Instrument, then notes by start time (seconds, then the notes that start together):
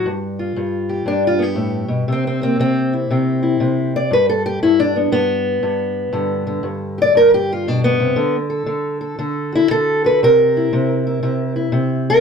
steel-string acoustic guitar
0.06 G2
0.39 F4
0.56 G2
0.89 G4
1.06 G2 D4
1.27 F4
1.39 B3 G4
1.55 A2
1.88 B2
2.08 C3
2.12 C4
2.27 C4
2.42 A#3 C4
2.59 C3 C4
2.93 E4
3.11 C3 C4
3.43 E4
3.60 C3
3.96 D5
4.11 G2 B4
4.29 A4
4.46 G4
4.63 G2 E4
4.80 D4
4.96 B3
5.12 G2 B3
5.63 G2
6.13 G2 D3
6.47 D3
6.63 G2
6.98 G4 D5
7.15 G2 A#4
7.34 G4
7.53 F4
7.68 B2 D4
7.84 B3
8.00 C3
8.16 D3
8.50 A4
8.66 D3
9.01 A4
9.19 D3 A4
9.53 E4 F#4
9.71 D3 A4
10.04 F#4 B4
10.23 C3 A#4
10.57 E4
10.73 C3
11.07 E4
11.23 C3 E4
11.56 E4
11.72 C3
12.10 A#4